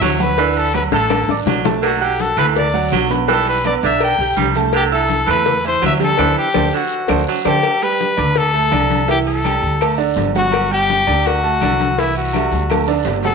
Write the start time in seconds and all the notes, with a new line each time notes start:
Already playing: E3 E4 E5
0.01 D2 F#3 C#5, cowbell, high conga, low timbale, low agogo, short guiro, claves, maracas
0.19 F#3 F#4 B4 F#5, cowbell, high conga, low agogo, short guiro, maracas
0.38 D3 E3 D4 D5, cowbell, long guiro, maracas
0.56 A4, high conga, low agogo, maracas
0.73 F#3 F#4 B4 F#5, cowbell, high conga, low agogo, short guiro, claves, maracas
0.92 A1 D3 A3 A4 A5, high bongo, high conga, short guiro, maracas
1.10 cowbell, high bongo, high timbale, low agogo, long guiro, claves, maracas
1.28 A1 D4 D5 D6, high bongo, maracas
1.46 B1 F#3, cowbell, low bongo, high conga, low timbale, low agogo, short guiro, maracas
1.64 A3 A4 A5, cowbell, low bongo, high conga, low timbale, short guiro, maracas
1.82 D3 F#4, cowbell, high conga, low agogo, long guiro, claves, maracas
2.01 F#4 G4 F#5 F#6, high conga, low agogo, maracas
2.19 A4, cowbell, high conga, short guiro, maracas
2.37 D2 E3 A3 A4 B4 A5, cowbell, high conga, low conga, low agogo, short guiro, claves, maracas
2.56 D5, cowbell, high conga, low conga, low agogo, long guiro, maracas
2.74 F#3 F#4 F#5, high conga, maracas
2.92 B1 F#3, cowbell, high conga, low timbale, low agogo, short guiro, claves, maracas
3.10 B3 B4 B5, cowbell, high conga, low agogo, short guiro, maracas
3.28 E3 G3 G4 A4 G5, cowbell, high conga, long guiro, maracas
3.46 B4, high conga, low agogo, maracas
3.64 B3 B4 D5 B5, cowbell, high conga, low agogo, short guiro, claves, maracas
3.83 B1 D3 D4 D5 E5 D6, short guiro, maracas
4.00 G5, cowbell, high conga, low agogo, long guiro, claves, maracas
4.18 B1 G4 G5 G6, high conga, maracas
4.36 C2 G3, cowbell, high conga, low timbale, low agogo, short guiro, maracas
4.55 A3 A4 A5, cowbell, high conga, short guiro, maracas
4.73 D3 G4, cowbell, high conga, low agogo, long guiro, claves, maracas
4.91 E4 A4 E5 E6, high conga, low agogo, maracas
5.09 cowbell, high conga, short guiro, maracas
5.27 E2 E3 A3 A4 B4 A5, cowbell, high conga, low conga, low agogo, short guiro, claves, maracas
5.46 cowbell, high conga, low conga, low agogo, long guiro, maracas
5.65 E3 E4 C5 E5, high conga, maracas
5.81 D2 F#3, cowbell, high conga, low timbale, low agogo, short guiro, claves, maracas
5.86 E5
6.00 G3 G4 G5, cowbell, high conga, low agogo, short guiro, maracas
6.04 A4
6.18 D2 E3 A4 C5 D5, cowbell, high conga, high timbale, long guiro, claves, maracas
6.39 G4
6.54 D2 A4 C5 D5, cowbell, high conga, high timbale, long guiro, claves, maracas
6.73 D3 F#4
7.08 D2 A4 C5 D5, cowbell, high conga, high timbale, long guiro, claves, maracas
7.28 F#3
7.45 D2 G4 A4 C5 D5, cowbell, high conga, high timbale, long guiro, claves, maracas
7.63 cowbell, high conga, low agogo, long guiro, claves, maracas
7.81 G3 G4 B4 G5, high conga, low agogo, maracas
7.99 cowbell, high conga, short guiro, maracas
8.17 D2 D4 D5 D6, cowbell, high conga, low conga, low agogo, short guiro, claves, maracas
8.36 A4, cowbell, high conga, low conga, low agogo, long guiro, maracas
8.54 A3 A4 A5, high conga, maracas
8.71 C2 D3 D4 D5, cowbell, high conga, low agogo, short guiro, claves, maracas
8.90 cowbell, high conga, low agogo, short guiro, maracas
9.08 E3 E4 G4 E5, cowbell, high conga, long guiro, maracas
9.27 A4, low agogo, maracas
9.44 G3 G4 G5, cowbell, high conga, low agogo, short guiro, claves, maracas
9.62 D2, high conga, short guiro, maracas
9.81 A3 A4 A5, cowbell, high conga, low agogo, long guiro, claves, maracas
9.98 D3 D4 D5, high conga, maracas
10.16 G1, cowbell, high conga, low timbale, low agogo, short guiro, maracas
10.35 F#3 F#4 F#5, cowbell, high conga, short guiro, maracas
10.52 cowbell, low agogo, long guiro, claves, maracas
10.71 G3 G4 G5, high conga, low agogo, maracas
10.89 cowbell, high conga, short guiro, maracas
11.07 D2 D4 D5 D6, cowbell, high conga, low conga, low agogo, short guiro, claves, maracas
11.26 F#4, cowbell, high conga, low agogo, long guiro, maracas
11.43 A3 A4 A5, high conga, maracas
11.61 C2 D3 D4 D5, cowbell, high conga, low agogo, short guiro, claves, maracas
11.79 cowbell, high conga, low agogo, short guiro, maracas
11.98 E3 E4 E5, cowbell, high conga, long guiro, maracas
12.15 F#4, high conga, low agogo, maracas
12.33 G3 A4 E5, cowbell, high conga, low agogo, short guiro, claves, maracas
12.52 D2, high conga, short guiro, maracas
12.70 A3 A4 A5, cowbell, high conga, low agogo, long guiro, claves, maracas
12.88 D3 D4 D5, high timbale, maracas
13.05 G1, cowbell, low conga, low timbale, low agogo, short guiro, maracas
13.23 F#3 F#4 A4 F#5, cowbell, low conga, low timbale, short guiro, maracas